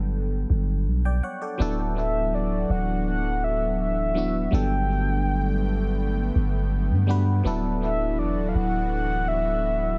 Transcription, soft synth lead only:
0, 0, Header, 1, 2, 480
1, 0, Start_track
1, 0, Key_signature, 2, "major"
1, 0, Tempo, 731707
1, 1044, Time_signature, 4, 2, 24, 8
1, 6550, End_track
2, 0, Start_track
2, 0, Title_t, "Soft synth lead"
2, 0, Program_c, 0, 80
2, 1294, Note_on_c, 0, 76, 89
2, 1538, Note_on_c, 0, 74, 88
2, 1548, Note_off_c, 0, 76, 0
2, 1777, Note_on_c, 0, 78, 102
2, 1786, Note_off_c, 0, 74, 0
2, 2011, Note_off_c, 0, 78, 0
2, 2016, Note_on_c, 0, 78, 103
2, 2256, Note_on_c, 0, 76, 97
2, 2266, Note_off_c, 0, 78, 0
2, 2490, Note_off_c, 0, 76, 0
2, 2494, Note_on_c, 0, 76, 104
2, 2974, Note_on_c, 0, 79, 117
2, 2984, Note_off_c, 0, 76, 0
2, 3929, Note_off_c, 0, 79, 0
2, 5130, Note_on_c, 0, 76, 85
2, 5370, Note_on_c, 0, 74, 92
2, 5380, Note_off_c, 0, 76, 0
2, 5566, Note_on_c, 0, 77, 67
2, 5576, Note_off_c, 0, 74, 0
2, 5609, Note_on_c, 0, 78, 100
2, 5619, Note_off_c, 0, 77, 0
2, 5843, Note_off_c, 0, 78, 0
2, 5847, Note_on_c, 0, 78, 106
2, 6088, Note_on_c, 0, 76, 108
2, 6098, Note_off_c, 0, 78, 0
2, 6550, Note_off_c, 0, 76, 0
2, 6550, End_track
0, 0, End_of_file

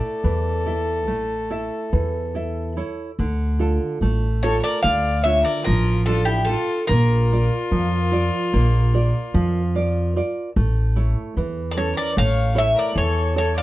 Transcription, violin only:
0, 0, Header, 1, 2, 480
1, 0, Start_track
1, 0, Key_signature, -1, "minor"
1, 0, Tempo, 837989
1, 1825, Time_signature, 9, 3, 24, 8
1, 2303, Tempo, 824176
1, 4223, Tempo, 811908
1, 6143, Tempo, 797872
1, 7984, End_track
2, 0, Start_track
2, 0, Title_t, "Violin"
2, 0, Program_c, 0, 40
2, 0, Note_on_c, 0, 69, 80
2, 1563, Note_off_c, 0, 69, 0
2, 2542, Note_on_c, 0, 69, 81
2, 2654, Note_off_c, 0, 69, 0
2, 2660, Note_on_c, 0, 70, 76
2, 2774, Note_off_c, 0, 70, 0
2, 2789, Note_on_c, 0, 74, 91
2, 3010, Note_off_c, 0, 74, 0
2, 3020, Note_on_c, 0, 73, 80
2, 3134, Note_off_c, 0, 73, 0
2, 3137, Note_on_c, 0, 70, 79
2, 3252, Note_off_c, 0, 70, 0
2, 3259, Note_on_c, 0, 65, 77
2, 3485, Note_off_c, 0, 65, 0
2, 3492, Note_on_c, 0, 65, 81
2, 3609, Note_off_c, 0, 65, 0
2, 3619, Note_on_c, 0, 64, 73
2, 3730, Note_off_c, 0, 64, 0
2, 3734, Note_on_c, 0, 65, 75
2, 3960, Note_off_c, 0, 65, 0
2, 3976, Note_on_c, 0, 65, 87
2, 5875, Note_off_c, 0, 65, 0
2, 6831, Note_on_c, 0, 70, 52
2, 6857, Note_off_c, 0, 70, 0
2, 6861, Note_on_c, 0, 69, 73
2, 6974, Note_off_c, 0, 69, 0
2, 6988, Note_on_c, 0, 70, 77
2, 7098, Note_off_c, 0, 70, 0
2, 7104, Note_on_c, 0, 73, 99
2, 7327, Note_off_c, 0, 73, 0
2, 7347, Note_on_c, 0, 73, 81
2, 7457, Note_off_c, 0, 73, 0
2, 7468, Note_on_c, 0, 70, 76
2, 7577, Note_off_c, 0, 70, 0
2, 7589, Note_on_c, 0, 69, 77
2, 7809, Note_off_c, 0, 69, 0
2, 7830, Note_on_c, 0, 69, 83
2, 7938, Note_off_c, 0, 69, 0
2, 7955, Note_on_c, 0, 74, 87
2, 7984, Note_off_c, 0, 74, 0
2, 7984, End_track
0, 0, End_of_file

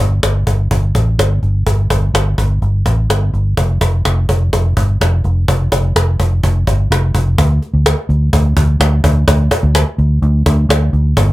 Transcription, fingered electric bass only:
0, 0, Header, 1, 2, 480
1, 0, Start_track
1, 0, Tempo, 475436
1, 1683, Time_signature, 4, 2, 24, 8
1, 11437, End_track
2, 0, Start_track
2, 0, Title_t, "Fingered electric bass"
2, 0, Program_c, 0, 33
2, 0, Note_on_c, 0, 31, 88
2, 188, Note_off_c, 0, 31, 0
2, 232, Note_on_c, 0, 31, 88
2, 431, Note_off_c, 0, 31, 0
2, 473, Note_on_c, 0, 31, 85
2, 673, Note_off_c, 0, 31, 0
2, 717, Note_on_c, 0, 31, 82
2, 916, Note_off_c, 0, 31, 0
2, 958, Note_on_c, 0, 33, 78
2, 1156, Note_off_c, 0, 33, 0
2, 1195, Note_on_c, 0, 31, 89
2, 1395, Note_off_c, 0, 31, 0
2, 1437, Note_on_c, 0, 31, 80
2, 1637, Note_off_c, 0, 31, 0
2, 1681, Note_on_c, 0, 31, 93
2, 1880, Note_off_c, 0, 31, 0
2, 1920, Note_on_c, 0, 31, 85
2, 2120, Note_off_c, 0, 31, 0
2, 2155, Note_on_c, 0, 31, 87
2, 2357, Note_off_c, 0, 31, 0
2, 2403, Note_on_c, 0, 31, 87
2, 2602, Note_off_c, 0, 31, 0
2, 2643, Note_on_c, 0, 31, 92
2, 2843, Note_off_c, 0, 31, 0
2, 2883, Note_on_c, 0, 33, 81
2, 3083, Note_off_c, 0, 33, 0
2, 3123, Note_on_c, 0, 31, 95
2, 3324, Note_off_c, 0, 31, 0
2, 3364, Note_on_c, 0, 31, 90
2, 3564, Note_off_c, 0, 31, 0
2, 3608, Note_on_c, 0, 29, 100
2, 3807, Note_off_c, 0, 29, 0
2, 3847, Note_on_c, 0, 29, 92
2, 4047, Note_off_c, 0, 29, 0
2, 4088, Note_on_c, 0, 29, 96
2, 4287, Note_off_c, 0, 29, 0
2, 4329, Note_on_c, 0, 29, 100
2, 4528, Note_off_c, 0, 29, 0
2, 4570, Note_on_c, 0, 29, 93
2, 4769, Note_off_c, 0, 29, 0
2, 4814, Note_on_c, 0, 31, 94
2, 5012, Note_off_c, 0, 31, 0
2, 5053, Note_on_c, 0, 29, 100
2, 5251, Note_off_c, 0, 29, 0
2, 5293, Note_on_c, 0, 29, 89
2, 5492, Note_off_c, 0, 29, 0
2, 5535, Note_on_c, 0, 29, 99
2, 5733, Note_off_c, 0, 29, 0
2, 5771, Note_on_c, 0, 29, 87
2, 5970, Note_off_c, 0, 29, 0
2, 6011, Note_on_c, 0, 29, 83
2, 6210, Note_off_c, 0, 29, 0
2, 6254, Note_on_c, 0, 29, 88
2, 6452, Note_off_c, 0, 29, 0
2, 6497, Note_on_c, 0, 29, 87
2, 6693, Note_off_c, 0, 29, 0
2, 6736, Note_on_c, 0, 31, 89
2, 6933, Note_off_c, 0, 31, 0
2, 6970, Note_on_c, 0, 29, 101
2, 7169, Note_off_c, 0, 29, 0
2, 7213, Note_on_c, 0, 29, 88
2, 7410, Note_off_c, 0, 29, 0
2, 7456, Note_on_c, 0, 38, 122
2, 7652, Note_off_c, 0, 38, 0
2, 7809, Note_on_c, 0, 38, 88
2, 8007, Note_off_c, 0, 38, 0
2, 8167, Note_on_c, 0, 38, 95
2, 8365, Note_off_c, 0, 38, 0
2, 8411, Note_on_c, 0, 38, 94
2, 8607, Note_off_c, 0, 38, 0
2, 8649, Note_on_c, 0, 38, 102
2, 8845, Note_off_c, 0, 38, 0
2, 8882, Note_on_c, 0, 38, 105
2, 9081, Note_off_c, 0, 38, 0
2, 9125, Note_on_c, 0, 38, 95
2, 9322, Note_off_c, 0, 38, 0
2, 9365, Note_on_c, 0, 38, 108
2, 9562, Note_off_c, 0, 38, 0
2, 9722, Note_on_c, 0, 38, 106
2, 9919, Note_off_c, 0, 38, 0
2, 10079, Note_on_c, 0, 38, 95
2, 10276, Note_off_c, 0, 38, 0
2, 10320, Note_on_c, 0, 38, 109
2, 10516, Note_off_c, 0, 38, 0
2, 10562, Note_on_c, 0, 38, 109
2, 10757, Note_off_c, 0, 38, 0
2, 10792, Note_on_c, 0, 38, 112
2, 10990, Note_off_c, 0, 38, 0
2, 11035, Note_on_c, 0, 38, 93
2, 11231, Note_off_c, 0, 38, 0
2, 11275, Note_on_c, 0, 31, 112
2, 11437, Note_off_c, 0, 31, 0
2, 11437, End_track
0, 0, End_of_file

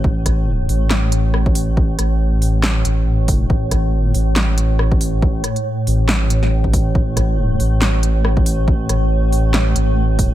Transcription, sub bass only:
0, 0, Header, 1, 2, 480
1, 0, Start_track
1, 0, Tempo, 431655
1, 49, Time_signature, 4, 2, 24, 8
1, 11498, End_track
2, 0, Start_track
2, 0, Title_t, "Sub bass"
2, 0, Program_c, 0, 38
2, 48, Note_on_c, 0, 33, 96
2, 752, Note_off_c, 0, 33, 0
2, 768, Note_on_c, 0, 33, 98
2, 2192, Note_off_c, 0, 33, 0
2, 2208, Note_on_c, 0, 33, 100
2, 3152, Note_off_c, 0, 33, 0
2, 3169, Note_on_c, 0, 33, 93
2, 3872, Note_off_c, 0, 33, 0
2, 3891, Note_on_c, 0, 33, 100
2, 4391, Note_off_c, 0, 33, 0
2, 4391, Note_on_c, 0, 32, 100
2, 4593, Note_off_c, 0, 32, 0
2, 4610, Note_on_c, 0, 33, 99
2, 6033, Note_off_c, 0, 33, 0
2, 6530, Note_on_c, 0, 33, 96
2, 7713, Note_off_c, 0, 33, 0
2, 7729, Note_on_c, 0, 33, 99
2, 8432, Note_off_c, 0, 33, 0
2, 8448, Note_on_c, 0, 33, 99
2, 9872, Note_off_c, 0, 33, 0
2, 9887, Note_on_c, 0, 33, 103
2, 10832, Note_off_c, 0, 33, 0
2, 10849, Note_on_c, 0, 33, 96
2, 11498, Note_off_c, 0, 33, 0
2, 11498, End_track
0, 0, End_of_file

